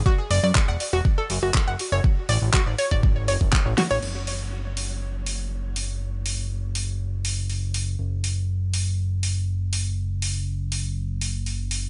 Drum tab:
CC |----------------|----------------|x---------------|----------------|
HH |--o---o---o---o-|--o---o---o---oo|--o---o---o---o-|--o---o---o-o-o-|
CP |----x-------x---|----x-------x---|----------------|----------------|
SD |----------------|--------------o-|----------------|----------------|
BD |o---o---o---o---|o---o--oo--oo---|----------------|----------------|

CC |----------------|----------------|
HH |--o---o---o---o-|--o---o---o-o-o-|
CP |----------------|----------------|
SD |----------------|----------------|
BD |----------------|----------------|